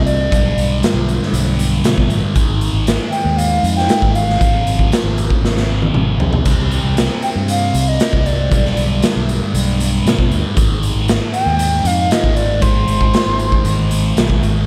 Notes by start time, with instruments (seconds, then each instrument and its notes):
Already playing: fingered electric bass C2, distorted electric guitar C3 G3 C4
0.06 flute D5, closed hi-hat
0.30 fingered electric bass B1, distorted electric guitar G2 D3 G3, kick, closed hi-hat
0.57 fingered electric bass B1, closed hi-hat
0.83 snare, closed hi-hat
0.94 fingered electric bass B1
1.09 closed hi-hat
1.23 snare
1.32 fingered electric bass B1, closed hi-hat
1.59 closed hi-hat
1.83 fingered electric bass B2, snare, closed hi-hat
1.98 fingered electric bass B2, kick
2.08 fingered electric bass A1, closed hi-hat
2.35 fingered electric bass G#1, distorted electric guitar G#2 D#3 G#3, kick, closed hi-hat
2.48 fingered electric bass G#1
2.61 closed hi-hat
2.73 fingered electric bass G#1
2.87 snare, closed hi-hat
3.11 flute G5, closed hi-hat
3.25 fingered electric bass D#2
3.37 flute F5, closed hi-hat
3.63 fingered electric bass F2, closed hi-hat
3.76 flute G5, snare
3.89 snare, closed hi-hat
4.02 fingered electric bass G#1, kick
4.15 flute F5, closed hi-hat
4.30 snare
4.40 fingered electric bass G#1, distorted electric guitar F2 C3 F3, kick, closed hi-hat
4.66 fingered electric bass G#1, closed hi-hat
4.79 kick
4.92 snare, closed hi-hat
5.04 fingered electric bass G#1
5.18 closed hi-hat
5.30 kick
5.42 fingered electric bass G#1, snare
5.57 snare
5.82 high tom
5.94 fingered electric bass G#1, mid tom
6.20 fingered electric bass B1, floor tom
6.33 floor tom
6.45 fingered electric bass C2, distorted electric guitar C3 G3 C4, kick, closed hi-hat, crash
6.59 fingered electric bass C2
6.71 closed hi-hat
6.83 fingered electric bass C2
6.97 snare, closed hi-hat
7.22 flute G5, closed hi-hat
7.35 fingered electric bass G2
7.48 flute F5, closed hi-hat
7.74 fingered electric bass C2, closed hi-hat
7.88 flute D#5
8.00 snare, closed hi-hat
8.13 fingered electric bass C2, kick
8.26 flute D5, closed hi-hat
8.51 fingered electric bass B1, distorted electric guitar G2 D3 G3, kick, closed hi-hat
8.66 snare
8.76 fingered electric bass B1, closed hi-hat
9.02 snare, closed hi-hat
9.16 fingered electric bass B1
9.29 closed hi-hat
9.54 fingered electric bass B1, closed hi-hat
9.80 closed hi-hat
10.05 fingered electric bass B2, snare, closed hi-hat
10.19 fingered electric bass B2, kick
10.31 fingered electric bass D2, closed hi-hat
10.55 fingered electric bass G#1, distorted electric guitar G#2 D#3 G#3, kick, closed hi-hat
10.70 fingered electric bass G#1
10.83 closed hi-hat
10.95 fingered electric bass G#1
11.08 snare, closed hi-hat
11.34 flute G5, closed hi-hat
11.46 fingered electric bass D#2
11.59 closed hi-hat
11.84 fingered electric bass F2, flute F5, closed hi-hat
12.11 flute D#5, snare, closed hi-hat
12.24 fingered electric bass G#1, kick
12.36 flute D5, closed hi-hat
12.61 distorted electric guitar G#2 D#3 G#3, flute C5, kick, closed hi-hat
12.87 fingered electric bass G#1, closed hi-hat
13.01 kick
13.14 snare, closed hi-hat
13.26 fingered electric bass G#1
13.39 closed hi-hat
13.52 kick
13.64 fingered electric bass G#1, closed hi-hat
13.91 closed hi-hat
14.17 fingered electric bass B1, snare, closed hi-hat
14.30 kick
14.43 fingered electric bass G#1, closed hi-hat